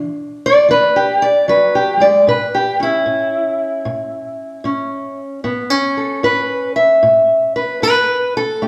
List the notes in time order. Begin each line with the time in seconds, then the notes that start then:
Already playing: E3 D4
0.46 D5
0.69 E3 B4
0.96 G4
1.22 D5
1.48 F#3 B4
1.75 G4
2.00 G#3 D5
2.27 A2 B4
2.55 G4
2.80 C#4 E4
3.06 A2
3.85 A2
4.64 A2 C#4
5.44 A2 B3
5.70 C#4
5.97 A4
6.23 A2 B4
6.76 E5
7.03 A2
7.56 B4
7.82 A2 B4
8.37 A4
8.62 A3 G4